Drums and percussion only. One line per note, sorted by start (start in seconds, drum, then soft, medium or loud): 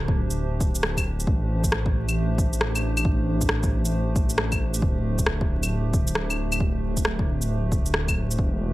0.08 kick loud
0.30 shaker medium
0.61 kick loud
0.61 shaker soft
0.75 shaker medium
0.83 cross-stick loud
0.97 kick medium
0.97 claves soft
0.97 shaker soft
1.20 shaker medium
1.27 kick loud
1.64 kick medium
1.64 shaker medium
1.72 cross-stick loud
1.86 kick loud
2.09 claves soft
2.09 shaker medium
2.38 kick loud
2.38 shaker soft
2.53 shaker medium
2.61 cross-stick loud
2.75 claves soft
2.75 shaker soft
2.97 claves medium
2.97 shaker medium
3.05 kick loud
3.41 kick medium
3.41 shaker medium
3.49 cross-stick loud
3.63 kick loud
3.63 shaker soft
3.85 shaker medium
4.16 kick loud
4.16 shaker soft
4.30 shaker medium
4.38 cross-stick loud
4.52 kick medium
4.52 claves soft
4.52 shaker soft
4.74 shaker medium
4.82 kick loud
5.19 kick medium
5.19 shaker medium
5.26 cross-stick loud
5.41 kick loud
5.63 claves soft
5.63 shaker medium
5.93 kick loud
5.93 shaker soft
6.07 shaker medium
6.15 cross-stick loud
6.30 claves medium
6.30 shaker soft
6.52 claves medium
6.52 shaker medium
6.60 kick loud
6.97 kick medium
6.97 shaker soft
7.05 cross-stick loud
7.19 kick loud
7.42 shaker medium
7.72 kick loud
7.72 shaker soft
7.86 shaker medium
7.94 cross-stick loud
8.08 kick medium
8.08 claves medium
8.08 shaker soft
8.31 shaker medium
8.39 kick loud